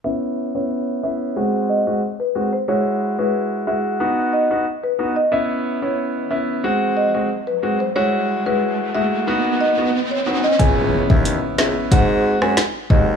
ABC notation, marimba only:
X:1
M:4/4
L:1/16
Q:1/4=91
K:C#m
V:1 name="Marimba"
e z2 c z2 e z3 d z2 B z ^B | c z2 B z2 e z3 d z2 B z d | e z2 c z2 e z3 d z2 B z ^B | c z2 B z2 e z3 d z2 c z d |
g z2 e z2 e z f z2 g z2 d z |]